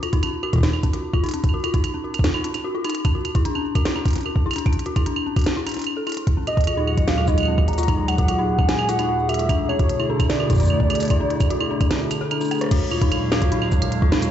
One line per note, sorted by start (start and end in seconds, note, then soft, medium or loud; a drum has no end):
0.03 0.06 F4 loud
0.03 closed hi-hat soft
0.03 claves medium
0.13 0.21 D#4 loud
0.13 kick loud
0.13 closed hi-hat medium
0.23 0.26 C#4 medium
0.23 closed hi-hat medium
0.23 claves medium
0.43 0.48 F#4 loud
0.43 claves medium
0.53 0.61 F4 loud
0.53 kick loud
0.53 closed hi-hat medium
0.56 kick medium
0.58 kick medium
0.61 0.69 D#4 loud
0.61 kick medium
0.63 kick soft
0.63 snare loud
0.63 closed hi-hat medium
0.66 kick soft
0.68 kick soft
0.71 kick soft
0.71 claves medium
0.83 0.89 C#4 medium
0.83 kick loud
0.83 closed hi-hat medium
0.93 0.99 F#4 medium
0.93 closed hi-hat medium
1.13 1.17 F4 loud
1.13 kick loud
1.13 claves medium
1.23 1.32 D#4 loud
1.23 closed hi-hat soft
1.26 closed hi-hat soft
1.29 closed hi-hat medium
1.31 1.37 C#4 medium
1.31 closed hi-hat soft
1.34 closed hi-hat medium
1.44 kick loud
1.44 closed hi-hat medium
1.49 claves soft
1.54 1.59 F#4 loud
1.64 1.72 F4 loud
1.64 closed hi-hat soft
1.64 claves medium
1.74 1.79 D#4 loud
1.74 kick loud
1.74 closed hi-hat medium
1.84 closed hi-hat medium
1.84 claves medium
1.94 1.99 C#4 medium
2.04 2.10 F#4 medium
2.14 closed hi-hat medium
2.14 claves medium
2.19 kick loud
2.24 2.28 F4 loud
2.24 snare loud
2.24 closed hi-hat medium
2.34 2.42 D#4 loud
2.34 claves medium
2.44 2.48 C#4 medium
2.44 closed hi-hat medium
2.54 closed hi-hat medium
2.54 claves medium
2.64 2.70 F#4 medium
2.75 2.83 F4 loud
2.85 2.90 D#4 loud
2.85 closed hi-hat medium
2.85 claves soft
2.87 closed hi-hat medium
2.87 claves soft
2.90 claves soft
2.92 closed hi-hat medium
2.92 claves soft
2.95 claves soft
2.97 claves soft
3.00 claves soft
3.02 closed hi-hat medium
3.02 claves soft
3.05 3.10 C#4 medium
3.05 kick loud
3.05 claves medium
3.15 3.20 F#4 medium
3.25 closed hi-hat soft
3.25 claves medium
3.35 3.38 E4 loud
3.35 kick loud
3.35 closed hi-hat medium
3.45 3.53 D4 loud
3.45 closed hi-hat medium
3.55 3.58 C#4 medium
3.55 claves medium
3.75 3.81 F#4 loud
3.75 kick loud
3.75 closed hi-hat medium
3.75 claves medium
3.85 3.94 E4 loud
3.85 snare loud
3.85 closed hi-hat medium
3.95 4.01 D4 loud
3.95 claves medium
4.05 kick loud
4.05 closed hi-hat medium
4.08 closed hi-hat medium
4.11 closed hi-hat soft
4.13 4.21 C#4 medium
4.13 closed hi-hat soft
4.16 closed hi-hat medium
4.18 closed hi-hat soft
4.21 closed hi-hat soft
4.23 4.31 F#4 medium
4.23 closed hi-hat soft
4.23 claves soft
4.36 kick loud
4.46 4.49 E4 loud
4.51 closed hi-hat soft
4.51 claves medium
4.53 4.64 D4 loud
4.53 closed hi-hat soft
4.56 closed hi-hat medium
4.58 closed hi-hat medium
4.66 4.69 C#4 medium
4.66 kick loud
4.66 closed hi-hat soft
4.66 claves soft
4.73 closed hi-hat soft
4.79 closed hi-hat soft
4.86 4.91 F#4 loud
4.86 closed hi-hat soft
4.96 5.04 E4 loud
4.96 kick loud
4.96 closed hi-hat medium
4.96 claves medium
5.06 5.12 D4 loud
5.06 closed hi-hat medium
5.16 claves medium
5.26 5.32 C#4 medium
5.36 5.42 F#4 medium
5.36 kick loud
5.36 closed hi-hat soft
5.36 claves soft
5.39 closed hi-hat soft
5.41 closed hi-hat soft
5.44 snare loud
5.44 closed hi-hat soft
5.46 closed hi-hat medium
5.56 5.60 E4 loud
5.66 5.75 D4 medium
5.66 closed hi-hat medium
5.66 claves soft
5.69 closed hi-hat soft
5.72 closed hi-hat soft
5.74 5.82 D4 medium
5.74 closed hi-hat soft
5.77 closed hi-hat soft
5.79 closed hi-hat soft
5.82 closed hi-hat soft
5.84 closed hi-hat soft
5.84 claves medium
5.97 6.02 A4 medium
6.07 6.12 E4 medium
6.07 closed hi-hat soft
6.07 claves soft
6.09 closed hi-hat soft
6.12 closed hi-hat medium
6.14 6.22 E4 medium
6.14 closed hi-hat soft
6.17 closed hi-hat medium
6.27 9.46 D#2 medium
6.27 9.46 A#2 medium
6.27 9.46 F#3 medium
6.27 9.46 G#3 medium
6.27 12.67 G#4 medium
6.27 9.46 F#5 medium
6.27 kick loud
6.27 closed hi-hat medium
6.37 6.42 C#4 medium
6.47 6.53 F#4 medium
6.47 7.04 D#5 loud
6.47 closed hi-hat soft
6.47 claves soft
6.57 kick loud
6.57 closed hi-hat soft
6.61 closed hi-hat soft
6.64 6.70 F4 loud
6.64 closed hi-hat soft
6.67 closed hi-hat medium
6.67 claves medium
6.77 6.85 D#4 loud
6.87 6.91 F4 medium
6.87 claves medium
6.97 kick loud
6.97 closed hi-hat soft
7.07 7.13 F#4 loud
7.07 7.26 F5 loud
7.07 snare loud
7.07 closed hi-hat medium
7.18 7.26 F4 medium
7.18 claves soft
7.28 7.33 D#4 loud
7.28 7.69 D#5 loud
7.28 kick loud
7.28 shaker medium
7.38 closed hi-hat soft
7.38 claves soft
7.40 claves soft
7.43 claves medium
7.45 7.53 C#4 medium
7.45 claves medium
7.58 7.63 F#4 medium
7.58 kick loud
7.58 claves soft
7.68 8.09 A#5 loud
7.68 closed hi-hat soft
7.73 closed hi-hat soft
7.78 7.81 F4 loud
7.78 closed hi-hat soft
7.78 shaker medium
7.83 closed hi-hat soft
7.88 7.96 D#4 loud
7.88 kick loud
7.88 closed hi-hat medium
7.88 claves medium
7.98 8.01 F4 medium
8.08 8.68 F#5 loud
8.08 closed hi-hat soft
8.08 claves medium
8.18 8.24 F#4 loud
8.18 kick loud
8.18 closed hi-hat soft
8.28 8.36 F4 loud
8.28 closed hi-hat medium
8.28 claves soft
8.38 8.44 D#4 loud
8.58 8.64 C#4 medium
8.58 kick loud
8.58 claves soft
8.68 8.74 F#4 medium
8.68 8.90 G#5 loud
8.68 snare loud
8.68 closed hi-hat medium
8.79 claves medium
8.89 8.92 F4 loud
8.89 9.30 F#5 loud
8.89 closed hi-hat medium
8.89 shaker medium
8.99 9.07 D#4 loud
8.99 closed hi-hat soft
8.99 claves medium
9.09 9.12 F4 medium
9.29 9.34 F#4 loud
9.29 9.68 E5 loud
9.29 closed hi-hat soft
9.29 claves soft
9.34 closed hi-hat medium
9.39 9.47 F4 loud
9.39 closed hi-hat soft
9.49 12.68 B2 medium
9.49 12.68 D3 medium
9.49 12.68 A3 medium
9.49 9.55 D4 loud
9.49 12.68 E4 medium
9.49 kick loud
9.49 closed hi-hat medium
9.49 claves medium
9.69 9.75 C#4 medium
9.69 10.11 C#5 loud
9.69 claves medium
9.79 9.85 F#4 medium
9.79 kick loud
9.79 closed hi-hat medium
9.89 closed hi-hat medium
9.99 10.03 E4 loud
9.99 claves medium
10.09 10.18 D4 loud
10.09 10.31 A4 medium
10.20 10.23 E4 medium
10.20 kick loud
10.20 closed hi-hat medium
10.20 claves medium
10.29 12.31 D5 loud
10.29 snare loud
10.29 closed hi-hat medium
10.40 10.45 F#4 loud
10.40 claves medium
10.50 10.58 E4 loud
10.50 kick medium
10.50 closed hi-hat medium
10.50 shaker soft
10.52 kick medium
10.52 shaker soft
10.55 kick medium
10.55 shaker soft
10.57 10.65 D4 loud
10.57 kick soft
10.57 closed hi-hat soft
10.57 shaker medium
10.60 shaker medium
10.62 kick soft
10.62 shaker medium
10.65 kick soft
10.65 shaker medium
10.68 claves medium
10.68 shaker medium
10.80 10.85 C#4 medium
10.80 kick loud
10.90 10.96 F#4 medium
10.90 closed hi-hat soft
10.90 claves medium
10.95 closed hi-hat medium
11.00 closed hi-hat soft
11.00 shaker medium
11.03 closed hi-hat soft
11.05 closed hi-hat soft
11.08 kick loud
11.08 closed hi-hat soft
11.10 11.14 E4 loud
11.10 closed hi-hat medium
11.10 claves medium
11.20 11.28 D4 loud
11.30 11.34 E4 medium
11.30 closed hi-hat soft
11.40 kick loud
11.40 closed hi-hat medium
11.40 claves medium
11.40 shaker medium
11.50 11.56 F#4 loud
11.50 closed hi-hat medium
11.61 11.69 E4 loud
11.61 claves medium
11.71 11.76 D4 loud
11.81 kick loud
11.81 closed hi-hat medium
11.81 claves medium
11.91 11.96 C#4 medium
11.91 snare loud
11.91 closed hi-hat medium
12.01 12.06 F#4 medium
12.11 closed hi-hat medium
12.11 claves medium
12.11 shaker medium
12.21 12.26 A4 loud
12.31 12.36 D4 medium
12.31 closed hi-hat soft
12.31 claves medium
12.41 12.46 D4 loud
12.41 shaker medium
12.44 shaker soft
12.48 cross-stick medium
12.48 closed hi-hat soft
12.48 claves medium
12.48 shaker soft
12.51 shaker soft
12.55 shaker soft
12.58 12.64 C#5 loud
12.58 cross-stick medium
12.58 closed hi-hat medium
12.58 shaker soft
12.64 cross-stick medium
12.66 cross-stick soft
12.69 14.31 D#2 medium
12.69 14.31 A#2 medium
12.69 14.31 F#3 medium
12.69 14.31 G#3 medium
12.69 12.77 F#4 medium
12.69 14.31 C#5 medium
12.69 14.31 F5 medium
12.69 kick loud
12.69 cross-stick soft
12.69 closed hi-hat medium
12.69 crash loud
12.91 12.95 F4 loud
12.91 claves medium
13.01 13.10 D#4 loud
13.01 kick loud
13.01 closed hi-hat medium
13.11 13.15 F4 medium
13.11 closed hi-hat medium
13.11 claves medium
13.32 13.37 F#4 loud
13.32 snare loud
13.32 claves medium
13.42 13.50 F4 loud
13.42 kick loud
13.42 closed hi-hat medium
13.52 13.57 D#4 loud
13.52 closed hi-hat medium
13.62 claves medium
13.72 13.77 C#4 medium
13.72 kick loud
13.72 shaker medium
13.82 13.87 F#4 medium
13.82 closed hi-hat medium
13.82 claves medium
13.92 closed hi-hat medium
14.02 14.05 F4 loud
14.02 kick loud
14.12 14.20 D#4 loud
14.12 snare loud
14.22 14.25 F4 medium
14.22 closed hi-hat medium
14.22 shaker medium